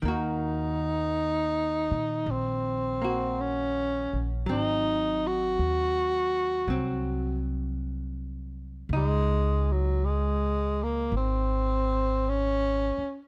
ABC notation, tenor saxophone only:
X:1
M:4/4
L:1/16
Q:"Swing" 1/4=54
K:Ebdor
V:1 name="Tenor saxophone"
E8 C4 D3 z | E2 G8 z6 | A,2 G,2 A,2 B,2 C4 D3 z |]